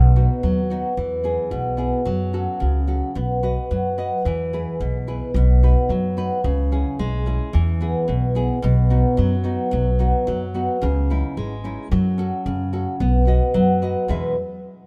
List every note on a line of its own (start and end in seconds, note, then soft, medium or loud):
0.00 0.26 B1 loud
0.00 0.41 B2 medium
0.16 0.59 B3 soft
0.16 0.59 D#4 soft
0.16 0.60 F#4 soft
0.43 0.81 D#2 medium
0.43 0.96 F#3 medium
0.70 0.92 B3 soft
0.70 0.92 D#4 soft
0.70 0.93 F#4 medium
0.97 1.36 E2 medium
0.97 1.51 E3 medium
1.23 1.68 B3 soft
1.23 1.68 E4 soft
1.23 1.69 G#4 medium
1.51 1.90 B1 medium
1.51 2.05 B2 medium
1.77 2.00 B3 soft
1.77 2.00 E4 soft
1.77 2.01 G#4 soft
2.05 2.45 F#2 medium
2.05 2.59 F#3 medium
2.33 2.78 C#4 soft
2.33 2.78 F#4 soft
2.33 2.78 A4 medium
2.60 3.00 C#2 medium
2.60 3.14 C#3 medium
2.87 3.10 C#4 soft
2.87 3.10 F#4 soft
2.87 3.11 A4 soft
3.15 3.55 B1 loud
3.15 3.43 B3 medium
3.43 3.87 F#4 soft
3.43 3.87 B4 soft
3.43 3.88 D#5 medium
3.71 4.09 F#2 medium
3.71 4.24 F#3 medium
3.98 4.20 F#4 soft
3.98 4.20 B4 soft
3.98 4.20 D#5 medium
4.25 4.64 E2 loud
4.25 4.79 E3 medium
4.53 4.97 E4 soft
4.53 4.97 G#4 soft
4.53 4.98 B4 medium
4.80 5.19 B1 medium
4.80 5.34 B2 medium
5.07 5.30 E4 soft
5.07 5.30 G#4 soft
5.07 5.30 B4 medium
5.34 5.73 B1 loud
5.34 5.89 B2 medium
5.63 6.07 D#4 soft
5.63 6.07 F#4 soft
5.63 6.07 B4 medium
5.89 6.28 F#2 medium
5.89 6.43 F#3 medium
6.17 6.39 D#4 soft
6.17 6.39 F#4 soft
6.17 6.39 B4 medium
6.44 6.83 C#2 loud
6.44 6.98 C#3 medium
6.72 7.16 C#4 soft
6.72 7.16 E4 soft
6.72 7.16 G#4 medium
6.99 7.38 B1 medium
6.99 7.52 G#3 medium
7.26 7.48 C#4 soft
7.26 7.49 E4 soft
7.26 7.49 G#4 soft
7.53 7.93 E2 loud
7.53 8.07 E3 medium
7.81 8.25 B3 medium
7.81 8.25 E4 soft
7.81 8.25 G#4 medium
8.08 8.47 B1 medium
8.08 8.61 B2 medium
8.35 8.58 B3 soft
8.35 8.58 E4 soft
8.35 8.58 G#4 medium
8.62 9.02 B1 loud
8.62 9.16 B2 medium
8.90 9.34 B3 medium
8.90 9.34 D#4 soft
8.90 9.34 F#4 medium
9.17 9.56 F#2 medium
9.17 9.70 F#3 medium
9.44 9.88 B3 soft
9.44 9.88 D#4 soft
9.44 9.89 F#4 soft
9.71 10.11 B1 loud
9.71 10.25 F#3 medium
9.99 10.43 B3 medium
9.99 10.43 D#4 soft
9.99 10.44 F#4 medium
10.27 10.66 F#2 medium
10.27 10.80 F#3 medium
10.54 10.76 B3 soft
10.54 10.77 D#4 soft
10.54 10.77 F#4 medium
10.82 11.21 C#2 loud
10.82 11.35 C#3 medium
11.10 11.54 C#4 soft
11.10 11.54 D#4 soft
11.10 11.54 E4 medium
11.37 11.75 G#1 medium
11.37 11.90 G#3 medium
11.64 11.86 C#4 soft
11.64 11.86 D#4 soft
11.64 11.86 E4 medium
11.91 12.30 F#2 loud
11.91 12.44 F#3 medium
12.18 12.62 C#4 soft
12.18 12.62 F#4 soft
12.18 12.62 A4 medium
12.46 12.84 F#2 medium
12.46 12.99 C#3 medium
12.73 12.95 C#4 soft
12.73 12.95 F#4 soft
12.73 12.95 A4 soft
13.00 13.39 B1 loud
13.00 13.27 B3 medium
13.27 13.71 F#4 soft
13.27 13.71 B4 soft
13.27 13.72 D#5 medium
13.54 13.93 F#2 medium
13.54 14.08 F#3 medium
13.82 14.04 F#4 soft
13.82 14.04 B4 soft
13.82 14.04 D#5 soft
14.08 14.34 E2 medium
14.08 14.35 E2 medium
14.08 14.35 B2 medium
14.08 14.35 G#3 medium
14.08 14.35 E4 medium
14.08 14.35 B4 medium
14.08 14.35 E5 medium